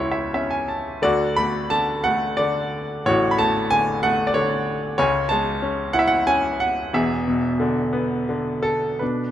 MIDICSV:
0, 0, Header, 1, 2, 480
1, 0, Start_track
1, 0, Tempo, 678733
1, 731, Time_signature, 3, 2, 24, 8
1, 2166, Tempo, 639659
1, 4086, Tempo, 657895
1, 5526, Tempo, 685714
1, 6006, Tempo, 734394
1, 6680, End_track
2, 0, Start_track
2, 0, Title_t, "Grand piano"
2, 0, Program_c, 0, 0
2, 0, Control_c, 0, 64, 127
2, 0, Note_on_c, 0, 37, 54
2, 0, Note_on_c, 0, 49, 66
2, 0, Note_on_c, 0, 56, 49
2, 0, Note_on_c, 0, 61, 50
2, 0, Note_on_c, 0, 64, 45
2, 0, Note_on_c, 0, 68, 53
2, 0, Note_on_c, 0, 71, 86
2, 0, Note_on_c, 0, 73, 56
2, 0, Note_on_c, 0, 76, 87
2, 75, Note_off_c, 0, 73, 0
2, 81, Note_off_c, 0, 76, 0
2, 81, Note_on_c, 0, 76, 55
2, 221, Note_off_c, 0, 68, 0
2, 232, Note_off_c, 0, 61, 0
2, 232, Note_off_c, 0, 76, 0
2, 242, Note_on_c, 0, 61, 46
2, 242, Note_on_c, 0, 76, 58
2, 357, Note_off_c, 0, 76, 0
2, 357, Note_on_c, 0, 80, 56
2, 464, Note_off_c, 0, 56, 0
2, 475, Note_off_c, 0, 80, 0
2, 483, Note_on_c, 0, 81, 48
2, 703, Note_off_c, 0, 49, 0
2, 704, Note_off_c, 0, 64, 0
2, 705, Note_off_c, 0, 37, 0
2, 710, Note_off_c, 0, 81, 0
2, 714, Note_off_c, 0, 61, 0
2, 721, Note_on_c, 0, 50, 57
2, 722, Note_on_c, 0, 38, 50
2, 727, Note_on_c, 0, 74, 79
2, 738, Control_c, 0, 64, 0
2, 738, Note_on_c, 0, 66, 57
2, 739, Note_off_c, 0, 71, 0
2, 861, Control_c, 0, 64, 127
2, 952, Note_off_c, 0, 74, 0
2, 965, Note_on_c, 0, 83, 86
2, 970, Note_on_c, 0, 57, 42
2, 1190, Note_off_c, 0, 83, 0
2, 1196, Note_off_c, 0, 50, 0
2, 1203, Note_on_c, 0, 81, 88
2, 1207, Note_on_c, 0, 50, 47
2, 1425, Note_off_c, 0, 66, 0
2, 1441, Note_on_c, 0, 78, 86
2, 1442, Note_off_c, 0, 57, 0
2, 1453, Note_off_c, 0, 81, 0
2, 1453, Note_on_c, 0, 57, 49
2, 1675, Note_on_c, 0, 74, 73
2, 1680, Note_off_c, 0, 50, 0
2, 1690, Note_on_c, 0, 50, 52
2, 1694, Note_off_c, 0, 78, 0
2, 2130, Note_off_c, 0, 74, 0
2, 2133, Note_off_c, 0, 38, 0
2, 2162, Note_on_c, 0, 45, 58
2, 2164, Note_on_c, 0, 33, 55
2, 2165, Note_on_c, 0, 73, 84
2, 2182, Note_on_c, 0, 66, 57
2, 2353, Note_on_c, 0, 83, 66
2, 2366, Note_off_c, 0, 73, 0
2, 2384, Note_off_c, 0, 57, 0
2, 2408, Note_off_c, 0, 83, 0
2, 2408, Note_on_c, 0, 81, 87
2, 2410, Note_on_c, 0, 57, 51
2, 2624, Note_off_c, 0, 50, 0
2, 2648, Note_on_c, 0, 80, 95
2, 2652, Note_on_c, 0, 50, 50
2, 2659, Note_off_c, 0, 81, 0
2, 2872, Note_off_c, 0, 66, 0
2, 2882, Note_off_c, 0, 57, 0
2, 2891, Note_on_c, 0, 78, 88
2, 2893, Note_on_c, 0, 57, 55
2, 2898, Note_off_c, 0, 80, 0
2, 3072, Note_on_c, 0, 74, 64
2, 3087, Note_off_c, 0, 78, 0
2, 3124, Note_off_c, 0, 50, 0
2, 3125, Note_on_c, 0, 73, 77
2, 3127, Note_off_c, 0, 74, 0
2, 3135, Note_on_c, 0, 50, 53
2, 3575, Note_off_c, 0, 73, 0
2, 3577, Note_off_c, 0, 45, 0
2, 3578, Note_off_c, 0, 33, 0
2, 3587, Note_off_c, 0, 57, 0
2, 3596, Note_off_c, 0, 50, 0
2, 3604, Note_on_c, 0, 73, 85
2, 3610, Note_on_c, 0, 49, 61
2, 3611, Note_on_c, 0, 37, 55
2, 3613, Note_on_c, 0, 80, 60
2, 3618, Control_c, 0, 64, 0
2, 3770, Control_c, 0, 64, 127
2, 3836, Note_on_c, 0, 81, 83
2, 3853, Note_off_c, 0, 73, 0
2, 3854, Note_on_c, 0, 56, 53
2, 4087, Note_on_c, 0, 61, 53
2, 4293, Note_off_c, 0, 80, 0
2, 4314, Note_on_c, 0, 78, 85
2, 4320, Note_on_c, 0, 64, 58
2, 4329, Note_off_c, 0, 81, 0
2, 4354, Note_on_c, 0, 76, 72
2, 4368, Note_off_c, 0, 78, 0
2, 4412, Note_off_c, 0, 76, 0
2, 4417, Note_on_c, 0, 78, 83
2, 4548, Note_off_c, 0, 61, 0
2, 4558, Note_on_c, 0, 80, 87
2, 4559, Note_on_c, 0, 61, 55
2, 4564, Note_off_c, 0, 78, 0
2, 4778, Note_off_c, 0, 56, 0
2, 4801, Note_on_c, 0, 78, 76
2, 4809, Note_off_c, 0, 80, 0
2, 5017, Note_off_c, 0, 37, 0
2, 5017, Note_off_c, 0, 49, 0
2, 5023, Note_off_c, 0, 64, 0
2, 5027, Note_off_c, 0, 78, 0
2, 5030, Note_off_c, 0, 61, 0
2, 5044, Note_on_c, 0, 40, 61
2, 5045, Note_on_c, 0, 28, 57
2, 5050, Note_on_c, 0, 76, 69
2, 5052, Note_on_c, 0, 68, 54
2, 5055, Control_c, 0, 64, 0
2, 5163, Control_c, 0, 64, 127
2, 5293, Note_on_c, 0, 47, 47
2, 5527, Note_on_c, 0, 50, 53
2, 5759, Note_on_c, 0, 59, 52
2, 5981, Note_off_c, 0, 68, 0
2, 5981, Note_off_c, 0, 76, 0
2, 6001, Note_off_c, 0, 50, 0
2, 6011, Note_on_c, 0, 50, 49
2, 6221, Note_off_c, 0, 47, 0
2, 6231, Note_on_c, 0, 69, 68
2, 6459, Note_off_c, 0, 28, 0
2, 6459, Note_off_c, 0, 40, 0
2, 6462, Note_off_c, 0, 69, 0
2, 6464, Note_off_c, 0, 59, 0
2, 6472, Note_on_c, 0, 71, 45
2, 6474, Note_off_c, 0, 50, 0
2, 6484, Note_on_c, 0, 47, 32
2, 6492, Note_on_c, 0, 62, 34
2, 6493, Control_c, 0, 64, 0
2, 6617, Control_c, 0, 64, 127
2, 6680, Note_off_c, 0, 47, 0
2, 6680, Note_off_c, 0, 62, 0
2, 6680, Note_off_c, 0, 71, 0
2, 6680, End_track
0, 0, End_of_file